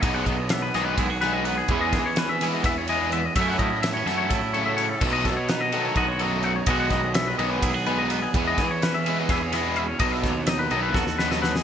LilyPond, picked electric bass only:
\new Staff \with { instrumentName = "Picked electric bass" } { \clef bass \time 7/8 \key e \major \tempo 4 = 126 b,,8 b,,4 b,,8 b,,4. | e,8 e4. e,4. | fis,8 a,4 fis,8 a,4. | b,,8 b,4. b,,4. |
b,,8 b,,4 b,,8 b,,4. | e,8 e4. e,4. | b,,8 dis,4 b,,8 dis,4. | }